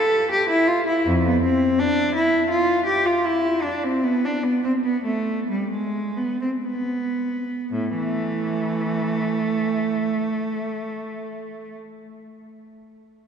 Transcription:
0.00 0.29 A4 medium
0.31 0.48 G4 medium
0.50 0.67 E4 medium
0.67 0.86 F4 medium
0.86 1.05 E4 medium
1.05 1.24 F2 medium
1.26 1.43 B3 medium
1.42 1.78 C4 medium
1.79 2.14 D4 medium
2.15 2.49 E4 medium
2.50 2.85 F4 medium
2.86 3.04 G4 medium
3.06 3.24 F4 medium
3.25 3.62 E4 medium
3.62 3.81 D4 medium
3.84 4.02 C4 medium
4.03 4.22 B3 medium
4.25 4.43 D4 medium
4.43 4.62 B3 medium
4.64 4.72 C4 medium
4.84 5.03 B3 medium
5.05 5.47 A3 medium
5.51 5.70 G3 medium
5.71 6.15 G#3 medium
6.17 6.39 B3 medium
6.41 6.49 C4 medium
6.65 7.69 B3 medium
7.73 7.95 A2 medium
7.97 9.98 E3 soft
7.97 11.74 A3 medium

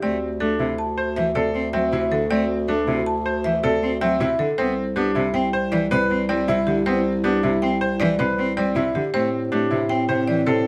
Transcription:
0.02 4.47 D2 medium
0.02 0.17 A3 medium
0.02 0.27 C4 medium
0.02 4.35 F#4 medium
0.02 0.27 D5 medium
0.40 0.55 A3 medium
0.40 0.65 D4 medium
0.40 0.65 A4 medium
0.59 0.74 C3 medium
0.59 0.84 E4 medium
0.78 1.03 A5 medium
0.98 1.22 C5 medium
1.16 1.31 E3 medium
1.16 1.41 E5 medium
1.35 1.50 C3 medium
1.35 1.60 A4 medium
1.35 1.60 D5 medium
1.54 1.69 C4 medium
1.73 1.88 F#3 medium
1.73 1.98 C4 medium
1.73 1.98 E5 medium
1.92 2.07 C3 medium
1.92 2.17 E4 medium
2.11 2.26 D3 medium
2.11 2.36 A4 medium
2.30 2.45 A3 medium
2.30 2.55 C4 medium
2.30 2.55 D5 medium
2.68 2.83 A3 medium
2.68 2.93 D4 medium
2.68 2.93 A4 medium
2.88 3.02 C3 medium
2.88 3.12 E4 medium
3.06 3.31 A5 medium
3.26 3.50 C5 medium
3.44 3.59 E3 medium
3.44 3.69 E5 medium
3.63 3.78 C3 medium
3.63 3.88 A4 medium
3.63 3.88 D5 medium
3.83 3.97 C4 medium
4.01 4.16 F#3 medium
4.01 4.26 C4 medium
4.01 4.26 E5 medium
4.20 4.35 C3 medium
4.20 4.45 E4 loud
4.39 4.54 D3 medium
4.39 4.64 A4 medium
4.58 9.02 C2 medium
4.58 4.73 B3 medium
4.58 4.83 C4 medium
4.58 8.91 E4 medium
4.58 4.83 C5 medium
4.96 5.11 B3 medium
4.96 5.21 D4 medium
4.96 5.21 G4 medium
5.15 5.30 C3 medium
5.15 5.40 E4 medium
5.34 5.48 C4 medium
5.34 5.59 G5 medium
5.53 5.78 C5 medium
5.72 5.86 E3 loud
5.72 5.97 D5 medium
5.91 6.06 C3 medium
5.91 6.16 B4 loud
5.91 6.16 C5 medium
6.10 6.25 C4 medium
6.29 6.44 G3 medium
6.29 6.54 C4 medium
6.29 6.54 D5 medium
6.48 6.62 C3 medium
6.48 6.73 E4 loud
6.67 6.82 D3 medium
6.67 6.92 G4 medium
6.86 7.00 B3 medium
6.86 7.11 C4 medium
6.86 7.11 C5 medium
7.24 7.38 B3 medium
7.24 7.49 D4 medium
7.24 7.49 G4 medium
7.43 7.57 C3 medium
7.43 7.68 E4 medium
7.62 7.77 C4 medium
7.62 7.87 G5 medium
7.81 8.06 C5 medium
8.00 8.15 E3 loud
8.00 8.25 D5 loud
8.19 8.33 C3 medium
8.19 8.44 B4 medium
8.19 8.44 C5 medium
8.38 8.52 C4 medium
8.57 8.71 G3 medium
8.57 8.82 C4 medium
8.57 8.82 D5 medium
8.75 8.90 C3 medium
8.75 9.01 E4 medium
8.95 9.09 D3 medium
8.95 9.20 G4 medium
9.14 10.67 A2 medium
9.14 9.28 A3 medium
9.14 9.39 C4 medium
9.14 10.67 C4 medium
9.14 9.39 C5 medium
9.52 9.66 A3 medium
9.52 9.77 D4 medium
9.52 9.77 G4 medium
9.71 9.85 C3 medium
9.71 9.96 E4 medium
9.89 10.04 C4 medium
9.89 10.15 G5 medium
10.09 10.23 C3 medium
10.09 10.34 C5 medium
10.28 10.42 E3 medium
10.28 10.53 D5 medium
10.46 10.61 C3 medium
10.46 10.67 A4 medium
10.46 10.67 C5 medium

